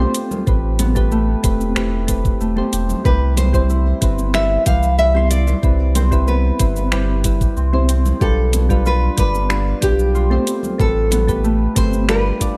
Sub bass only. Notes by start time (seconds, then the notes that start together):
0.47 A1
1.44 E1
1.76 E1
2.41 E1
2.73 E1
3.05 C2
4.02 G1
4.66 C2
5.63 C2
6.60 G1
6.92 G1
7.57 C2
8.21 B1
9.18 G1
9.83 B1
10.80 A1
11.76 G1